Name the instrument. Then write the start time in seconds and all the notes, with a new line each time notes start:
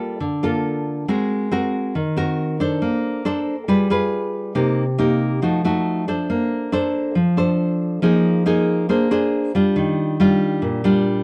nylon-string guitar
Already playing: G3 A#3 F4 A4
0.20 D3
0.43 A#3 F4 A4
1.08 G#3 C4 F#4 A#4
1.52 C4 F#4 A#4
1.95 D#3
2.16 C4 F#4 A#4
2.60 D4 A4 C5
2.82 A#3
3.25 D4 A4 C5
3.68 G3 F4 G#4 B4
3.90 F4 G#4 B4
4.55 C3 A#3 D#4 G4
4.98 A#3 D#4 G4
5.42 F3 A3 D#4 F#4
5.65 A3 D#4 F#4
6.08 D4 A4 C5
6.30 A#3
6.72 D4 A4 C5
7.15 F3
7.37 D4 A4 C5
8.02 F3 A#3 D#4 G#4
8.46 A#3 D#4 G#4
8.89 A#3 D4 G#4 C5
9.11 D4 G#4 C5
9.55 G3 D4 F4
9.76 D#3
10.20 G3 D4 F4
10.62 A#2
10.84 G3 D4 F4